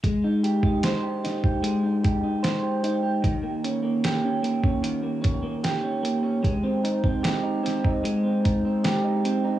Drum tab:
HH |x-x-x-x-x-x-x-x-|x-x-x-x-x-x-x-x-|x-x-x-x-x-x-x-x-|
SD |----o-o-----o---|----o-------o---|----o-o-----o---|
BD |o--o---o--o-----|o------o--o-----|o--o---o--o-----|